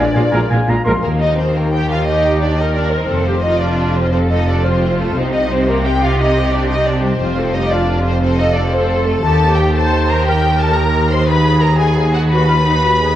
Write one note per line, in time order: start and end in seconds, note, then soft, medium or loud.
0.00 1.05 A#2 medium
0.00 0.49 D4 medium
0.00 0.22 G#4 soft
0.00 0.49 D5 medium
0.00 0.50 D5 medium
0.00 0.50 G#5 medium
0.06 0.86 A#3 soft
0.14 0.23 A#1 medium
0.14 0.22 A#2 medium
0.14 0.23 G#3 medium
0.14 0.76 F4 medium
0.14 0.23 F4 medium
0.14 0.24 F5 medium
0.14 0.22 G#5 soft
0.24 0.67 G#4 soft
0.31 0.40 A#1 medium
0.31 0.39 A#2 medium
0.31 0.39 F3 medium
0.31 0.39 G#3 medium
0.31 0.41 G#3 medium
0.31 0.41 F4 medium
0.31 0.38 A#4 medium
0.31 0.58 A#4 medium
0.31 0.41 F5 medium
0.31 0.40 G#5 soft
0.42 1.05 F5 medium
0.50 0.57 A#1 medium
0.50 0.57 A#2 medium
0.50 0.59 G#3 medium
0.50 0.58 F4 medium
0.50 0.59 F5 medium
0.50 0.71 G#5 medium
0.50 1.05 G#5 medium
0.59 1.38 A#4 medium
0.67 0.76 A#1 medium
0.67 0.74 A#2 medium
0.67 0.76 G#3 medium
0.67 0.76 F4 soft
0.67 1.05 G#4 medium
0.67 0.76 F5 medium
0.67 0.84 A#5 medium
0.78 1.05 F4 medium
0.85 0.93 A#1 medium
0.85 0.93 A#2 medium
0.85 0.92 F3 medium
0.85 0.93 G#3 medium
0.85 0.94 G#3 medium
0.85 1.13 A#3 soft
0.85 0.94 F4 soft
0.85 0.91 A#4 medium
0.85 0.93 F5 medium
0.85 1.03 C6 medium
0.95 1.05 F3 soft
1.02 3.06 D#2 medium
1.02 3.12 D#3 medium
1.02 1.19 A#3 medium
1.02 1.10 A#4 medium
1.14 2.76 A#3 soft
1.20 1.37 D#4 medium
1.20 2.67 D#4 medium
1.20 1.38 D#5 medium
1.30 2.59 G4 soft
1.36 1.54 C4 medium
1.36 3.12 A#4 soft
1.36 1.55 C5 medium
1.48 2.50 D#5 soft
1.55 1.72 A#3 medium
1.55 1.73 A#4 medium
1.55 1.72 G5 medium
1.65 1.81 A#5 soft
1.72 1.90 G4 medium
1.72 1.89 G5 medium
1.72 1.90 G5 soft
1.83 1.99 A#5 medium
1.90 2.07 F4 medium
1.90 2.07 F5 medium
1.90 2.08 G5 soft
2.00 2.16 A#5 medium
2.06 2.41 D#4 medium
2.06 2.56 G4 medium
2.06 2.41 D#5 medium
2.06 2.24 G5 soft
2.17 2.32 A#5 soft
2.25 2.41 G5 medium
2.33 3.12 A#5 soft
2.42 2.59 D4 medium
2.42 2.59 D5 medium
2.42 3.12 G5 soft
2.51 3.12 D#5 soft
2.58 2.76 D#4 medium
2.58 3.12 G4 soft
2.58 3.11 A#4 medium
2.58 2.75 D#5 medium
2.68 2.84 D#4 soft
2.75 2.93 A#3 soft
2.75 2.83 D4 medium
2.75 2.92 D5 medium
2.85 3.02 D#4 soft
2.93 3.12 A#3 soft
2.93 3.43 C4 medium
2.93 3.45 C5 medium
3.03 3.12 D#4 soft
3.10 5.11 F1 medium
3.10 5.11 F2 medium
3.10 5.17 F3 medium
3.10 3.28 A4 medium
3.20 4.81 A3 soft
3.28 4.73 C4 soft
3.28 3.35 G4 medium
3.38 4.65 F4 soft
3.44 3.62 D#4 medium
3.44 4.12 F4 medium
3.44 5.17 A4 soft
3.44 3.61 D#5 medium
3.54 4.56 C5 soft
3.61 3.95 D4 medium
3.61 3.95 D5 medium
3.61 3.78 F5 medium
3.71 3.87 A5 medium
3.79 3.95 F5 medium
3.89 4.03 A5 medium
3.95 4.12 C4 medium
3.95 4.10 C5 medium
3.95 4.12 F5 soft
4.04 4.20 A5 soft
4.11 4.20 C4 medium
4.11 4.63 A4 medium
4.11 4.18 C5 medium
4.11 4.29 F5 medium
4.21 4.37 A5 soft
4.30 4.47 D#4 medium
4.30 4.47 D#5 medium
4.30 4.47 F5 medium
4.38 5.16 A5 soft
4.48 4.65 D4 medium
4.48 4.65 D5 medium
4.48 5.17 F5 soft
4.57 5.59 C5 soft
4.64 4.98 C4 medium
4.64 5.15 F4 medium
4.64 5.17 F4 soft
4.64 4.99 C5 medium
4.74 4.89 C4 soft
4.82 4.98 A3 soft
4.90 5.07 C4 soft
4.99 5.17 A3 soft
4.99 5.16 A3 medium
4.99 5.15 A4 medium
5.08 5.32 C4 soft
5.16 7.20 C2 medium
5.16 7.20 C3 medium
5.16 7.21 C3 medium
5.16 5.32 C4 medium
5.16 5.67 D#4 medium
5.16 5.33 C5 medium
5.25 6.85 G3 soft
5.31 6.77 C4 soft
5.31 5.38 D#4 medium
5.31 5.50 D#5 medium
5.42 6.68 D#4 soft
5.49 5.66 C4 medium
5.49 7.22 G4 soft
5.49 5.67 C5 medium
5.61 6.60 C5 soft
5.67 5.84 A#3 medium
5.67 7.19 G4 medium
5.67 5.85 A#4 medium
5.67 5.85 D#5 medium
5.79 5.93 G5 medium
5.84 5.91 G4 medium
5.84 6.02 D#5 soft
5.84 6.01 G5 medium
5.95 6.11 G5 medium
6.01 6.18 F4 medium
6.01 6.19 D#5 soft
6.01 6.18 F5 medium
6.12 6.27 G5 medium
6.18 6.52 D#4 medium
6.18 6.51 D#5 medium
6.18 6.35 D#5 medium
6.28 6.43 G5 soft
6.37 6.51 D#5 medium
6.45 7.22 G5 soft
6.52 6.69 D4 medium
6.52 6.69 D5 medium
6.52 7.21 D#5 soft
6.62 7.63 C5 medium
6.69 7.21 D#4 soft
6.69 6.87 D#4 medium
6.69 6.85 D#5 medium
6.78 6.94 C4 soft
6.85 7.03 G3 soft
6.85 7.02 D4 medium
6.85 7.03 D5 medium
6.95 7.12 C4 soft
7.03 7.22 G3 soft
7.03 7.55 C4 medium
7.03 7.53 C5 medium
7.13 7.35 C4 soft
7.21 9.20 F1 medium
7.21 9.20 F2 medium
7.21 9.25 F3 medium
7.21 7.37 F4 medium
7.29 8.88 A3 medium
7.37 8.79 C4 medium
7.37 7.54 A4 medium
7.46 8.71 F4 soft
7.54 7.71 D#4 medium
7.54 7.71 G4 medium
7.54 9.25 A4 medium
7.54 7.71 D#5 medium
7.64 8.63 C5 soft
7.71 8.05 D4 medium
7.71 8.22 F4 medium
7.71 8.04 D5 medium
7.71 7.88 F5 medium
7.81 7.97 A5 soft
7.89 8.06 F5 soft
7.98 8.14 A5 soft
8.03 8.13 C4 medium
8.03 8.21 C5 medium
8.03 8.22 F5 medium
8.15 8.29 A5 medium
8.22 8.38 C4 medium
8.22 8.72 A4 medium
8.22 8.38 C5 medium
8.22 8.38 F5 medium
8.31 8.46 A5 medium
8.38 8.45 D#4 medium
8.38 8.55 D#5 medium
8.38 8.55 F5 medium
8.48 9.25 A5 soft
8.54 8.61 D4 medium
8.54 8.72 D5 medium
8.54 9.25 F5 medium
8.64 9.25 C5 medium
8.72 9.06 C4 medium
8.72 9.25 F4 soft
8.72 9.23 A4 medium
8.72 9.07 C5 medium
8.80 8.97 C4 soft
8.89 9.04 A3 soft
8.98 9.13 C4 medium
9.06 9.24 A3 soft
9.06 9.13 A3 medium
9.06 9.23 A4 medium
9.15 9.25 C4 soft
9.23 13.15 D#2 medium
9.23 11.25 D#3 medium
9.23 9.74 G4 medium
9.23 9.57 A4 medium
9.23 9.58 A5 loud
9.32 10.93 A#3 soft
9.40 10.83 D#4 medium
9.49 10.75 G4 medium
9.56 9.74 G4 medium
9.56 9.74 G5 medium
9.66 10.66 D#5 soft
9.74 10.08 A4 medium
9.74 10.25 C5 medium
9.74 9.91 G5 medium
9.74 10.08 A5 medium
9.83 10.00 A#5 medium
9.92 10.08 G5 medium
10.01 10.16 A#5 medium
10.08 10.25 A#4 medium
10.08 10.25 G5 medium
10.08 10.26 A#5 medium
10.25 10.60 G4 medium
10.25 11.28 A#4 medium
10.25 10.59 G5 medium
10.25 10.41 G5 medium
10.35 10.49 A#5 soft
10.42 10.59 G5 medium
10.51 11.29 A#5 soft
10.60 10.77 A4 medium
10.60 11.29 G5 medium
10.60 10.77 A5 medium
10.68 11.70 D#5 medium
10.76 11.28 G4 medium
10.76 11.11 A#4 medium
10.76 11.10 A#5 medium
10.84 11.00 D#4 soft
10.94 11.08 A#3 soft
11.02 11.17 D#4 soft
11.09 11.28 A#3 soft
11.09 11.28 C5 medium
11.09 11.27 C6 medium
11.18 11.43 D#4 soft
11.27 13.15 D#3 medium
11.27 12.30 G#4 medium
11.27 11.62 B4 medium
11.27 11.61 B5 loud
11.35 12.99 B3 soft
11.44 12.91 D#4 medium
11.53 12.82 F#4 soft
11.60 11.67 A#4 medium
11.60 13.15 B4 soft
11.60 11.79 A#5 medium
11.71 12.74 D#5 soft
11.79 12.13 G#4 medium
11.79 11.95 F#5 medium
11.79 12.13 G#5 medium
11.88 12.03 B5 medium
11.96 12.12 F#5 soft
12.04 12.20 B5 soft
12.13 12.31 F#4 medium
12.13 12.28 F#5 soft
12.13 12.21 F#5 medium
12.21 12.37 B5 medium
12.29 12.49 F#4 medium
12.29 13.15 B4 medium
12.29 12.47 F#5 medium
12.29 13.15 B5 loud
12.48 12.55 F4 medium
12.48 12.65 F#5 medium
12.66 12.82 D#4 medium
12.66 13.15 F#5 soft
12.75 13.15 D#5 soft
12.83 13.15 F#4 soft
12.83 12.90 F#4 medium
12.92 13.08 D#4 soft
13.00 13.15 B3 soft
13.00 13.15 G#4 medium
13.09 13.15 D#4 soft